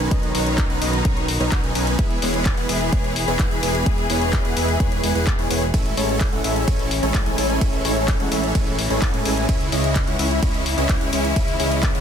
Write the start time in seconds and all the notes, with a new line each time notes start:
Already playing: D#3 B3, sub drop
0.11 B1 F#3 C#4 D#4 B4 D#5, kick, closed hi-hat
0.23 closed hi-hat
0.35 B1 F#3 C#4 D#4 B4 C#5, open hi-hat
0.46 closed hi-hat
0.58 kick, clap, closed hi-hat
0.70 B1 F#3 C#4 D#4 B4 F#5, closed hi-hat
0.82 B1 F#3 C#4 D#4 B4 D#5, open hi-hat
0.93 closed hi-hat
1.05 B1 D#4 B4 C#5, kick, closed hi-hat
1.17 closed hi-hat
1.28 open hi-hat
1.40 B1 F#3 C#4 D#4 B4 C#5, closed hi-hat
1.52 B1 F#3 F#5, kick, clap, closed hi-hat
1.64 B1 F#3 C#4 D#4 B4 G#5, closed hi-hat
1.75 B1 F#3 C#4 D#4 B4 G#5, open hi-hat
1.87 closed hi-hat
1.99 E1 E3 B3 E4 G#4 E5, kick, closed hi-hat
2.11 closed hi-hat
2.22 E1 G#3 B3 E4 B4 C#5, open hi-hat
2.34 closed hi-hat
2.46 kick, clap, closed hi-hat
2.57 E1 G#3 B3 E4 B4 F#5, closed hi-hat
2.69 E1 G#3 B3 E4 B4 E5, open hi-hat
2.81 closed hi-hat
2.93 E1 G#3 B3 E4 B4 C#5, kick, closed hi-hat
3.04 closed hi-hat
3.16 open hi-hat
3.28 E1 G#3 B3 E4 B4 C#5, closed hi-hat
3.39 E1 B3 E4 F#5, kick, clap, closed hi-hat
3.51 E1 G#3 B3 E4 B4 G#5, closed hi-hat
3.63 E1 G#3 B3 E4 B4 G#5, open hi-hat
3.75 closed hi-hat
3.86 E1 G#3 B3 E4 B4 E5, kick, closed hi-hat
3.98 closed hi-hat
4.10 E1 G#3 B3 E4 B4 C#5, open hi-hat
4.22 closed hi-hat
4.33 kick, clap, closed hi-hat
4.45 E1 G#3 B3 E4 B4 F#5, closed hi-hat
4.57 E1 G#3 B3 E4 B4 E5, open hi-hat
4.68 closed hi-hat
4.80 E1 G#3 B3 E4 B4 C#5, kick, closed hi-hat
4.92 closed hi-hat
5.04 E1 G#3 B3 E4 B4 G#5, open hi-hat
5.15 E1 G#3 B3 E4 B4 F#5, closed hi-hat
5.27 kick, clap, closed hi-hat
5.39 E1 G#3 B3 E4 B4 C#5, closed hi-hat
5.50 E1 G#3 B3 E4 B4 C#5, open hi-hat
5.74 A1 E3 G#3 C#4 E4 A4 E5, kick, closed hi-hat, ride
5.86 closed hi-hat
5.97 A1 G#3 C#4 E4 A4 C#5, open hi-hat
6.09 closed hi-hat
6.21 kick, clap, closed hi-hat, ride
6.32 A1 G#3 C#4 E4 A4 F#5, closed hi-hat
6.44 A1 G#3 C#4 E4 A4 E5, open hi-hat
6.56 closed hi-hat
6.68 A1 G#3 C#4 E4 A4 C#5, kick, closed hi-hat, ride
6.79 closed hi-hat
6.91 open hi-hat
7.03 A1 G#3 C#4 E4 A4 C#5, closed hi-hat
7.14 A1 G#3 C#4 E4 A4, kick, clap, closed hi-hat, ride
7.26 A1 G#3 C#4 E4 A4 G#5, closed hi-hat
7.38 A1 G#3 C#4 E4 A4 G#5, open hi-hat
7.50 closed hi-hat
7.61 A1 G#3 C#4 E4 A4 E5, kick, closed hi-hat, ride
7.73 closed hi-hat
7.85 A1 G#3 C#4 E4 A4 C#5, open hi-hat
7.97 closed hi-hat
8.08 kick, clap, closed hi-hat, ride
8.20 A1 G#3 C#4 E4 A4 F#5, closed hi-hat
8.32 A1 G#3 C#4 E4 A4 E5, open hi-hat
8.43 closed hi-hat
8.55 A1 G#3 C#4 C#5, kick, closed hi-hat, ride
8.67 closed hi-hat
8.79 open hi-hat
8.90 A1 G#3 C#4 E4 A4 C#5, closed hi-hat
9.02 A1 F#5, kick, clap, closed hi-hat, ride
9.14 A2 G#3 C#4 E4 A4 G#5, closed hi-hat
9.25 A1 G#3 C#4 E4 A4 G#5, open hi-hat
9.37 closed hi-hat
9.49 C#2 C#3 G#3 C#4 E4 C#5, kick, closed hi-hat, ride
9.61 closed hi-hat
9.72 C#2 G#3 C#4 E4 C#5 D#5, open hi-hat
9.84 closed hi-hat
9.96 kick, clap, closed hi-hat, ride
10.07 C#2 G#3 C#4 E4 C#5 F#5, closed hi-hat
10.19 C#2 G#3 C#4 E4 C#5 E5, open hi-hat
10.31 closed hi-hat
10.43 C#2 G#3 C#4 E4 C#5 D#5, kick, closed hi-hat, ride
10.54 closed hi-hat
10.66 open hi-hat
10.78 C#2 G#3 C#4 E4 C#5 D#5, closed hi-hat
10.89 C#2 G#3 E4, kick, clap, closed hi-hat, ride
11.01 C#2 G#3 C#4 E4 C#5 G#5, closed hi-hat
11.13 C#2 G#3 C#4 E4 C#5 G#5, open hi-hat
11.25 closed hi-hat
11.36 C#2 G#3 C#4 C#5, kick, closed hi-hat, ride
11.48 closed hi-hat
11.60 C#2 G#3 C#4 E4 C#5 D#5, open hi-hat
11.71 closed hi-hat
11.83 kick, clap, closed hi-hat, ride
11.95 C#2 G#3 C#4 E4 C#5 F#5, closed hi-hat